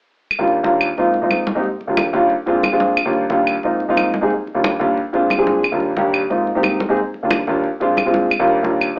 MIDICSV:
0, 0, Header, 1, 3, 480
1, 0, Start_track
1, 0, Key_signature, -3, "major"
1, 0, Tempo, 333333
1, 438, Time_signature, 4, 2, 24, 8
1, 12946, End_track
2, 0, Start_track
2, 0, Title_t, "Grand piano"
2, 0, Program_c, 0, 0
2, 557, Note_on_c, 0, 39, 76
2, 560, Note_on_c, 0, 55, 72
2, 564, Note_on_c, 0, 58, 69
2, 570, Note_on_c, 0, 62, 70
2, 576, Note_on_c, 0, 65, 86
2, 810, Note_off_c, 0, 39, 0
2, 812, Note_off_c, 0, 55, 0
2, 814, Note_off_c, 0, 58, 0
2, 816, Note_off_c, 0, 62, 0
2, 820, Note_off_c, 0, 65, 0
2, 911, Note_on_c, 0, 39, 80
2, 921, Note_on_c, 0, 55, 67
2, 930, Note_on_c, 0, 58, 74
2, 933, Note_on_c, 0, 62, 70
2, 941, Note_on_c, 0, 65, 84
2, 1251, Note_off_c, 0, 39, 0
2, 1256, Note_off_c, 0, 55, 0
2, 1261, Note_off_c, 0, 58, 0
2, 1262, Note_off_c, 0, 62, 0
2, 1266, Note_off_c, 0, 65, 0
2, 1408, Note_on_c, 0, 44, 72
2, 1412, Note_on_c, 0, 58, 69
2, 1413, Note_on_c, 0, 60, 72
2, 1424, Note_on_c, 0, 63, 65
2, 1434, Note_on_c, 0, 65, 87
2, 1656, Note_off_c, 0, 44, 0
2, 1658, Note_off_c, 0, 58, 0
2, 1658, Note_off_c, 0, 60, 0
2, 1664, Note_off_c, 0, 63, 0
2, 1669, Note_off_c, 0, 65, 0
2, 1750, Note_on_c, 0, 44, 77
2, 1757, Note_on_c, 0, 58, 69
2, 1766, Note_on_c, 0, 60, 68
2, 1771, Note_on_c, 0, 63, 68
2, 1777, Note_on_c, 0, 65, 79
2, 2091, Note_off_c, 0, 44, 0
2, 2095, Note_off_c, 0, 58, 0
2, 2099, Note_off_c, 0, 60, 0
2, 2102, Note_off_c, 0, 63, 0
2, 2105, Note_off_c, 0, 65, 0
2, 2232, Note_on_c, 0, 44, 85
2, 2238, Note_on_c, 0, 58, 75
2, 2243, Note_on_c, 0, 60, 71
2, 2250, Note_on_c, 0, 63, 77
2, 2252, Note_on_c, 0, 67, 79
2, 2356, Note_off_c, 0, 44, 0
2, 2359, Note_off_c, 0, 58, 0
2, 2362, Note_off_c, 0, 60, 0
2, 2365, Note_off_c, 0, 63, 0
2, 2366, Note_off_c, 0, 67, 0
2, 2698, Note_on_c, 0, 39, 73
2, 2712, Note_on_c, 0, 55, 64
2, 2717, Note_on_c, 0, 58, 61
2, 2724, Note_on_c, 0, 62, 63
2, 2729, Note_on_c, 0, 65, 77
2, 2962, Note_off_c, 0, 39, 0
2, 2969, Note_off_c, 0, 55, 0
2, 2971, Note_off_c, 0, 58, 0
2, 2975, Note_off_c, 0, 62, 0
2, 2977, Note_off_c, 0, 65, 0
2, 3067, Note_on_c, 0, 39, 84
2, 3072, Note_on_c, 0, 55, 76
2, 3076, Note_on_c, 0, 58, 71
2, 3081, Note_on_c, 0, 62, 71
2, 3088, Note_on_c, 0, 65, 90
2, 3314, Note_off_c, 0, 39, 0
2, 3317, Note_off_c, 0, 55, 0
2, 3319, Note_off_c, 0, 58, 0
2, 3321, Note_off_c, 0, 62, 0
2, 3325, Note_off_c, 0, 65, 0
2, 3547, Note_on_c, 0, 46, 90
2, 3557, Note_on_c, 0, 56, 74
2, 3559, Note_on_c, 0, 60, 79
2, 3568, Note_on_c, 0, 62, 75
2, 3577, Note_on_c, 0, 65, 93
2, 3806, Note_off_c, 0, 46, 0
2, 3812, Note_off_c, 0, 56, 0
2, 3813, Note_off_c, 0, 60, 0
2, 3817, Note_off_c, 0, 62, 0
2, 3822, Note_off_c, 0, 65, 0
2, 3914, Note_on_c, 0, 46, 83
2, 3923, Note_on_c, 0, 56, 80
2, 3924, Note_on_c, 0, 60, 70
2, 3934, Note_on_c, 0, 65, 90
2, 3936, Note_on_c, 0, 62, 78
2, 4255, Note_off_c, 0, 46, 0
2, 4259, Note_off_c, 0, 56, 0
2, 4260, Note_off_c, 0, 60, 0
2, 4265, Note_off_c, 0, 62, 0
2, 4265, Note_off_c, 0, 65, 0
2, 4398, Note_on_c, 0, 39, 79
2, 4401, Note_on_c, 0, 55, 73
2, 4408, Note_on_c, 0, 58, 72
2, 4414, Note_on_c, 0, 62, 68
2, 4419, Note_on_c, 0, 65, 90
2, 4653, Note_off_c, 0, 39, 0
2, 4654, Note_off_c, 0, 55, 0
2, 4658, Note_off_c, 0, 58, 0
2, 4661, Note_off_c, 0, 62, 0
2, 4663, Note_off_c, 0, 65, 0
2, 4751, Note_on_c, 0, 39, 81
2, 4759, Note_on_c, 0, 55, 71
2, 4761, Note_on_c, 0, 58, 67
2, 4774, Note_on_c, 0, 62, 75
2, 4775, Note_on_c, 0, 65, 89
2, 5094, Note_off_c, 0, 39, 0
2, 5097, Note_off_c, 0, 55, 0
2, 5098, Note_off_c, 0, 58, 0
2, 5105, Note_off_c, 0, 62, 0
2, 5106, Note_off_c, 0, 65, 0
2, 5238, Note_on_c, 0, 44, 73
2, 5245, Note_on_c, 0, 58, 69
2, 5252, Note_on_c, 0, 60, 68
2, 5258, Note_on_c, 0, 63, 67
2, 5259, Note_on_c, 0, 65, 73
2, 5493, Note_off_c, 0, 44, 0
2, 5497, Note_off_c, 0, 58, 0
2, 5500, Note_off_c, 0, 60, 0
2, 5503, Note_off_c, 0, 63, 0
2, 5503, Note_off_c, 0, 65, 0
2, 5595, Note_on_c, 0, 44, 80
2, 5600, Note_on_c, 0, 58, 75
2, 5603, Note_on_c, 0, 60, 75
2, 5611, Note_on_c, 0, 63, 75
2, 5618, Note_on_c, 0, 65, 91
2, 5936, Note_off_c, 0, 44, 0
2, 5938, Note_off_c, 0, 58, 0
2, 5940, Note_off_c, 0, 60, 0
2, 5944, Note_off_c, 0, 63, 0
2, 5947, Note_off_c, 0, 65, 0
2, 6066, Note_on_c, 0, 44, 76
2, 6074, Note_on_c, 0, 58, 73
2, 6082, Note_on_c, 0, 60, 75
2, 6082, Note_on_c, 0, 63, 76
2, 6093, Note_on_c, 0, 68, 90
2, 6195, Note_off_c, 0, 44, 0
2, 6199, Note_off_c, 0, 58, 0
2, 6203, Note_off_c, 0, 60, 0
2, 6203, Note_off_c, 0, 63, 0
2, 6209, Note_off_c, 0, 68, 0
2, 6546, Note_on_c, 0, 39, 76
2, 6550, Note_on_c, 0, 55, 70
2, 6557, Note_on_c, 0, 58, 63
2, 6567, Note_on_c, 0, 62, 65
2, 6567, Note_on_c, 0, 65, 77
2, 6808, Note_off_c, 0, 39, 0
2, 6810, Note_off_c, 0, 55, 0
2, 6813, Note_off_c, 0, 58, 0
2, 6818, Note_off_c, 0, 62, 0
2, 6818, Note_off_c, 0, 65, 0
2, 6905, Note_on_c, 0, 39, 87
2, 6913, Note_on_c, 0, 55, 67
2, 6921, Note_on_c, 0, 58, 70
2, 6921, Note_on_c, 0, 62, 81
2, 6927, Note_on_c, 0, 65, 94
2, 7155, Note_off_c, 0, 39, 0
2, 7159, Note_off_c, 0, 55, 0
2, 7163, Note_off_c, 0, 58, 0
2, 7163, Note_off_c, 0, 62, 0
2, 7166, Note_off_c, 0, 65, 0
2, 7386, Note_on_c, 0, 46, 84
2, 7396, Note_on_c, 0, 56, 71
2, 7399, Note_on_c, 0, 60, 77
2, 7407, Note_on_c, 0, 62, 80
2, 7417, Note_on_c, 0, 65, 96
2, 7648, Note_off_c, 0, 46, 0
2, 7653, Note_off_c, 0, 56, 0
2, 7654, Note_off_c, 0, 60, 0
2, 7658, Note_off_c, 0, 62, 0
2, 7663, Note_off_c, 0, 65, 0
2, 7741, Note_on_c, 0, 46, 84
2, 7744, Note_on_c, 0, 56, 67
2, 7752, Note_on_c, 0, 60, 73
2, 7757, Note_on_c, 0, 62, 74
2, 7761, Note_on_c, 0, 68, 88
2, 8089, Note_off_c, 0, 46, 0
2, 8091, Note_off_c, 0, 56, 0
2, 8095, Note_off_c, 0, 60, 0
2, 8097, Note_off_c, 0, 62, 0
2, 8099, Note_off_c, 0, 68, 0
2, 8236, Note_on_c, 0, 39, 77
2, 8241, Note_on_c, 0, 55, 67
2, 8248, Note_on_c, 0, 58, 72
2, 8256, Note_on_c, 0, 62, 74
2, 8256, Note_on_c, 0, 65, 80
2, 8492, Note_off_c, 0, 39, 0
2, 8495, Note_off_c, 0, 55, 0
2, 8499, Note_off_c, 0, 58, 0
2, 8503, Note_off_c, 0, 62, 0
2, 8503, Note_off_c, 0, 65, 0
2, 8595, Note_on_c, 0, 39, 81
2, 8598, Note_on_c, 0, 55, 74
2, 8607, Note_on_c, 0, 58, 76
2, 8616, Note_on_c, 0, 62, 74
2, 8621, Note_on_c, 0, 67, 82
2, 8936, Note_off_c, 0, 39, 0
2, 8938, Note_off_c, 0, 55, 0
2, 8942, Note_off_c, 0, 58, 0
2, 8947, Note_off_c, 0, 62, 0
2, 8949, Note_off_c, 0, 67, 0
2, 9072, Note_on_c, 0, 44, 76
2, 9074, Note_on_c, 0, 58, 64
2, 9083, Note_on_c, 0, 60, 64
2, 9084, Note_on_c, 0, 63, 63
2, 9096, Note_on_c, 0, 65, 76
2, 9331, Note_off_c, 0, 44, 0
2, 9331, Note_off_c, 0, 58, 0
2, 9336, Note_off_c, 0, 60, 0
2, 9337, Note_off_c, 0, 63, 0
2, 9343, Note_off_c, 0, 65, 0
2, 9434, Note_on_c, 0, 44, 84
2, 9436, Note_on_c, 0, 58, 73
2, 9449, Note_on_c, 0, 60, 72
2, 9452, Note_on_c, 0, 63, 70
2, 9454, Note_on_c, 0, 67, 91
2, 9775, Note_off_c, 0, 44, 0
2, 9776, Note_off_c, 0, 58, 0
2, 9783, Note_off_c, 0, 60, 0
2, 9784, Note_off_c, 0, 63, 0
2, 9785, Note_off_c, 0, 67, 0
2, 9918, Note_on_c, 0, 44, 85
2, 9918, Note_on_c, 0, 58, 73
2, 9928, Note_on_c, 0, 60, 82
2, 9935, Note_on_c, 0, 63, 74
2, 9940, Note_on_c, 0, 68, 90
2, 10041, Note_off_c, 0, 44, 0
2, 10041, Note_off_c, 0, 58, 0
2, 10046, Note_off_c, 0, 60, 0
2, 10050, Note_off_c, 0, 63, 0
2, 10052, Note_off_c, 0, 68, 0
2, 10408, Note_on_c, 0, 39, 65
2, 10419, Note_on_c, 0, 55, 59
2, 10425, Note_on_c, 0, 58, 62
2, 10426, Note_on_c, 0, 62, 71
2, 10435, Note_on_c, 0, 65, 78
2, 10658, Note_off_c, 0, 39, 0
2, 10663, Note_off_c, 0, 55, 0
2, 10667, Note_off_c, 0, 58, 0
2, 10667, Note_off_c, 0, 62, 0
2, 10671, Note_off_c, 0, 65, 0
2, 10762, Note_on_c, 0, 39, 84
2, 10772, Note_on_c, 0, 55, 76
2, 10773, Note_on_c, 0, 58, 73
2, 10779, Note_on_c, 0, 62, 83
2, 10790, Note_on_c, 0, 65, 89
2, 11003, Note_off_c, 0, 39, 0
2, 11008, Note_off_c, 0, 55, 0
2, 11008, Note_off_c, 0, 58, 0
2, 11011, Note_off_c, 0, 62, 0
2, 11016, Note_off_c, 0, 65, 0
2, 11237, Note_on_c, 0, 46, 90
2, 11245, Note_on_c, 0, 56, 76
2, 11254, Note_on_c, 0, 60, 73
2, 11257, Note_on_c, 0, 62, 81
2, 11265, Note_on_c, 0, 65, 97
2, 11492, Note_off_c, 0, 46, 0
2, 11496, Note_off_c, 0, 56, 0
2, 11500, Note_off_c, 0, 60, 0
2, 11502, Note_off_c, 0, 62, 0
2, 11505, Note_off_c, 0, 65, 0
2, 11594, Note_on_c, 0, 46, 80
2, 11602, Note_on_c, 0, 56, 80
2, 11611, Note_on_c, 0, 60, 79
2, 11613, Note_on_c, 0, 62, 74
2, 11621, Note_on_c, 0, 65, 90
2, 11934, Note_off_c, 0, 46, 0
2, 11937, Note_off_c, 0, 56, 0
2, 11942, Note_off_c, 0, 60, 0
2, 11943, Note_off_c, 0, 62, 0
2, 11947, Note_off_c, 0, 65, 0
2, 12089, Note_on_c, 0, 39, 90
2, 12090, Note_on_c, 0, 58, 81
2, 12091, Note_on_c, 0, 55, 83
2, 12103, Note_on_c, 0, 62, 78
2, 12106, Note_on_c, 0, 65, 87
2, 12337, Note_off_c, 0, 39, 0
2, 12337, Note_off_c, 0, 58, 0
2, 12338, Note_off_c, 0, 55, 0
2, 12344, Note_off_c, 0, 62, 0
2, 12345, Note_off_c, 0, 65, 0
2, 12422, Note_on_c, 0, 39, 80
2, 12433, Note_on_c, 0, 55, 72
2, 12441, Note_on_c, 0, 58, 78
2, 12450, Note_on_c, 0, 62, 68
2, 12455, Note_on_c, 0, 65, 85
2, 12767, Note_off_c, 0, 39, 0
2, 12772, Note_off_c, 0, 55, 0
2, 12776, Note_off_c, 0, 58, 0
2, 12780, Note_off_c, 0, 62, 0
2, 12783, Note_off_c, 0, 65, 0
2, 12899, Note_on_c, 0, 44, 72
2, 12946, Note_off_c, 0, 44, 0
2, 12946, End_track
3, 0, Start_track
3, 0, Title_t, "Drums"
3, 445, Note_on_c, 9, 63, 28
3, 445, Note_on_c, 9, 75, 65
3, 589, Note_off_c, 9, 63, 0
3, 589, Note_off_c, 9, 75, 0
3, 685, Note_on_c, 9, 63, 33
3, 829, Note_off_c, 9, 63, 0
3, 927, Note_on_c, 9, 63, 54
3, 1071, Note_off_c, 9, 63, 0
3, 1164, Note_on_c, 9, 75, 60
3, 1172, Note_on_c, 9, 63, 34
3, 1308, Note_off_c, 9, 75, 0
3, 1316, Note_off_c, 9, 63, 0
3, 1407, Note_on_c, 9, 63, 33
3, 1551, Note_off_c, 9, 63, 0
3, 1641, Note_on_c, 9, 63, 33
3, 1785, Note_off_c, 9, 63, 0
3, 1882, Note_on_c, 9, 75, 56
3, 1886, Note_on_c, 9, 63, 75
3, 2026, Note_off_c, 9, 75, 0
3, 2030, Note_off_c, 9, 63, 0
3, 2115, Note_on_c, 9, 63, 83
3, 2259, Note_off_c, 9, 63, 0
3, 2357, Note_on_c, 9, 63, 28
3, 2501, Note_off_c, 9, 63, 0
3, 2602, Note_on_c, 9, 63, 31
3, 2746, Note_off_c, 9, 63, 0
3, 2839, Note_on_c, 9, 75, 54
3, 2840, Note_on_c, 9, 63, 83
3, 2983, Note_off_c, 9, 75, 0
3, 2984, Note_off_c, 9, 63, 0
3, 3078, Note_on_c, 9, 63, 31
3, 3222, Note_off_c, 9, 63, 0
3, 3311, Note_on_c, 9, 63, 34
3, 3455, Note_off_c, 9, 63, 0
3, 3554, Note_on_c, 9, 63, 28
3, 3698, Note_off_c, 9, 63, 0
3, 3791, Note_on_c, 9, 63, 78
3, 3799, Note_on_c, 9, 75, 58
3, 3935, Note_off_c, 9, 63, 0
3, 3943, Note_off_c, 9, 75, 0
3, 4032, Note_on_c, 9, 63, 78
3, 4176, Note_off_c, 9, 63, 0
3, 4268, Note_on_c, 9, 63, 31
3, 4276, Note_on_c, 9, 75, 67
3, 4412, Note_off_c, 9, 63, 0
3, 4420, Note_off_c, 9, 75, 0
3, 4508, Note_on_c, 9, 63, 33
3, 4652, Note_off_c, 9, 63, 0
3, 4749, Note_on_c, 9, 63, 61
3, 4893, Note_off_c, 9, 63, 0
3, 4991, Note_on_c, 9, 63, 34
3, 4997, Note_on_c, 9, 75, 57
3, 5135, Note_off_c, 9, 63, 0
3, 5141, Note_off_c, 9, 75, 0
3, 5231, Note_on_c, 9, 63, 34
3, 5375, Note_off_c, 9, 63, 0
3, 5473, Note_on_c, 9, 63, 27
3, 5617, Note_off_c, 9, 63, 0
3, 5719, Note_on_c, 9, 63, 72
3, 5723, Note_on_c, 9, 75, 57
3, 5863, Note_off_c, 9, 63, 0
3, 5867, Note_off_c, 9, 75, 0
3, 5958, Note_on_c, 9, 63, 78
3, 6102, Note_off_c, 9, 63, 0
3, 6199, Note_on_c, 9, 63, 29
3, 6343, Note_off_c, 9, 63, 0
3, 6442, Note_on_c, 9, 63, 34
3, 6586, Note_off_c, 9, 63, 0
3, 6684, Note_on_c, 9, 63, 91
3, 6685, Note_on_c, 9, 75, 50
3, 6828, Note_off_c, 9, 63, 0
3, 6829, Note_off_c, 9, 75, 0
3, 6926, Note_on_c, 9, 63, 35
3, 7070, Note_off_c, 9, 63, 0
3, 7162, Note_on_c, 9, 63, 32
3, 7306, Note_off_c, 9, 63, 0
3, 7398, Note_on_c, 9, 63, 28
3, 7542, Note_off_c, 9, 63, 0
3, 7637, Note_on_c, 9, 63, 70
3, 7647, Note_on_c, 9, 75, 60
3, 7781, Note_off_c, 9, 63, 0
3, 7791, Note_off_c, 9, 75, 0
3, 7875, Note_on_c, 9, 63, 72
3, 8019, Note_off_c, 9, 63, 0
3, 8113, Note_on_c, 9, 63, 29
3, 8125, Note_on_c, 9, 75, 59
3, 8257, Note_off_c, 9, 63, 0
3, 8269, Note_off_c, 9, 75, 0
3, 8353, Note_on_c, 9, 63, 33
3, 8497, Note_off_c, 9, 63, 0
3, 8591, Note_on_c, 9, 63, 55
3, 8735, Note_off_c, 9, 63, 0
3, 8832, Note_on_c, 9, 63, 32
3, 8840, Note_on_c, 9, 75, 62
3, 8976, Note_off_c, 9, 63, 0
3, 8984, Note_off_c, 9, 75, 0
3, 9082, Note_on_c, 9, 63, 33
3, 9226, Note_off_c, 9, 63, 0
3, 9319, Note_on_c, 9, 63, 27
3, 9463, Note_off_c, 9, 63, 0
3, 9551, Note_on_c, 9, 63, 77
3, 9561, Note_on_c, 9, 75, 60
3, 9695, Note_off_c, 9, 63, 0
3, 9705, Note_off_c, 9, 75, 0
3, 9797, Note_on_c, 9, 63, 78
3, 9941, Note_off_c, 9, 63, 0
3, 10036, Note_on_c, 9, 63, 28
3, 10180, Note_off_c, 9, 63, 0
3, 10284, Note_on_c, 9, 63, 32
3, 10428, Note_off_c, 9, 63, 0
3, 10521, Note_on_c, 9, 63, 86
3, 10526, Note_on_c, 9, 75, 58
3, 10665, Note_off_c, 9, 63, 0
3, 10670, Note_off_c, 9, 75, 0
3, 10760, Note_on_c, 9, 63, 37
3, 10904, Note_off_c, 9, 63, 0
3, 10999, Note_on_c, 9, 63, 36
3, 11143, Note_off_c, 9, 63, 0
3, 11247, Note_on_c, 9, 63, 29
3, 11391, Note_off_c, 9, 63, 0
3, 11479, Note_on_c, 9, 63, 75
3, 11490, Note_on_c, 9, 75, 59
3, 11623, Note_off_c, 9, 63, 0
3, 11634, Note_off_c, 9, 75, 0
3, 11720, Note_on_c, 9, 63, 77
3, 11864, Note_off_c, 9, 63, 0
3, 11958, Note_on_c, 9, 63, 31
3, 11972, Note_on_c, 9, 75, 68
3, 12102, Note_off_c, 9, 63, 0
3, 12116, Note_off_c, 9, 75, 0
3, 12201, Note_on_c, 9, 63, 32
3, 12345, Note_off_c, 9, 63, 0
3, 12448, Note_on_c, 9, 63, 57
3, 12592, Note_off_c, 9, 63, 0
3, 12684, Note_on_c, 9, 63, 33
3, 12693, Note_on_c, 9, 75, 59
3, 12828, Note_off_c, 9, 63, 0
3, 12837, Note_off_c, 9, 75, 0
3, 12946, End_track
0, 0, End_of_file